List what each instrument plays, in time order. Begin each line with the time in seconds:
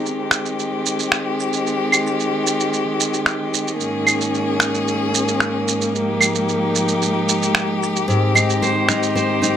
Already playing: string quartet D#3 G#3 C4 G4
0.06 shaker
0.31 finger snap, shaker
0.46 shaker
0.59 shaker
0.86 shaker
0.99 shaker
1.12 finger snap, shaker
1.40 shaker
1.53 shaker
1.67 shaker
1.92 claves, shaker
2.07 shaker
2.20 shaker
2.47 shaker
2.60 shaker
2.73 shaker
3.00 shaker
3.13 shaker
3.26 finger snap, shaker
3.54 shaker
3.67 shaker
3.79 string quartet G#2 A#3 C#4 G#4, shaker
4.07 claves, shaker
4.21 shaker
4.34 shaker
4.60 finger snap, shaker
4.74 shaker
4.88 shaker
5.14 shaker
5.28 shaker
5.40 finger snap, shaker
5.68 shaker
5.81 shaker
5.94 string quartet F3 G#3 D#4 G4, shaker
6.21 claves, shaker
6.35 shaker
6.49 shaker
6.75 shaker
6.88 shaker
7.02 shaker
7.29 shaker
7.42 shaker
7.55 finger snap, shaker
7.83 shaker
7.96 shaker
8.08 steel-string acoustic guitar G#2, string quartet D#3 C4, shaker
8.35 steel-string acoustic guitar D#4, claves, shaker
8.50 shaker
8.62 steel-string acoustic guitar C5, shaker
8.89 steel-string acoustic guitar D#4, finger snap, shaker
9.03 shaker
9.15 steel-string acoustic guitar C5, shaker
9.42 steel-string acoustic guitar D#4, shaker